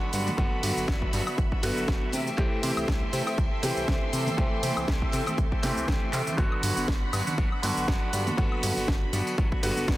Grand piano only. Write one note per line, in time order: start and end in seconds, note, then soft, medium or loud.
0.00 0.35 D3 medium
0.00 0.36 B3 medium
0.00 0.36 F#4 medium
0.37 1.60 D3 medium
0.37 1.61 B3 medium
0.37 1.61 F#4 medium
1.63 2.12 D3 medium
1.63 2.12 B3 medium
1.63 2.12 F#4 medium
2.37 3.60 E3 medium
2.37 3.60 A3 medium
2.37 3.60 C4 medium
2.37 3.61 G4 loud
3.62 4.35 E3 medium
3.62 4.35 A3 medium
3.62 4.36 C4 medium
3.62 4.36 G4 medium
4.37 5.60 E3 medium
4.37 5.60 A3 medium
4.37 5.60 C4 medium
4.37 5.61 G4 medium
5.62 6.35 E3 medium
5.62 6.35 A3 medium
5.62 6.36 C4 medium
5.62 6.36 G4 medium
6.37 7.60 D3 medium
6.37 7.61 B3 medium
6.37 7.61 F#4 medium
7.62 8.35 D3 medium
7.62 8.36 B3 medium
7.62 8.36 F#4 medium
8.37 9.60 D3 medium
8.37 9.60 B3 medium
8.37 9.61 F#4 medium
9.63 9.97 D3 medium
9.63 9.97 B3 medium
9.63 9.97 F#4 medium